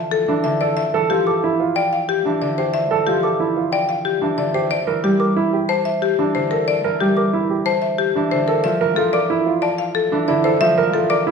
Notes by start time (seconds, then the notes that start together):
Already playing: D3 E3 F3 A5
0.11 A4
0.28 E3 D4
0.44 D3 E5
0.61 A4 D5
0.77 E5
0.94 E3 A4
1.10 F3 F4 G4
1.27 A4 D6
1.44 E4
1.60 F4
1.76 D5 G5
1.93 F5
2.09 G4
2.25 E3 D4
2.42 D3 D5
2.58 G4 C5
2.74 E5
2.90 E3 A4
3.07 F3 F4 G4
3.23 A4 D6
3.40 E4
3.57 F4
3.72 D5 G5
3.89 F5
4.05 G4
4.22 E3 D4
4.38 D3 D5
4.54 G4 C5
4.71 D5
4.87 E3 A#4
5.03 G3 G4
5.20 A#4 D6
5.36 E4
5.53 G4
5.69 C5 A5
5.85 E5
6.02 G4
6.19 E3 D4
6.35 D3 C5
6.51 A4 A#4
6.68 D5
6.84 E3 A#4
7.00 G3 G4
7.17 A#4 D6
7.33 E4
7.50 G4
7.66 C5 A5
7.82 E5
7.98 G4
8.15 E3 D4
8.31 D3 C5
8.48 A4 A#4
8.64 F3 E5
8.81 E3 A#4
8.96 F3 F4 A4
9.13 A#4 D5 D6
9.30 E4
9.46 F4
9.62 D5 A5
9.78 F5
9.95 A4
10.12 E3 D4
10.28 D3 E4 D5
10.44 A4 C5
10.61 F3 E5
10.77 E3 A#4
10.93 F3 F4 A4
11.10 A#4 D5 D6
11.27 E4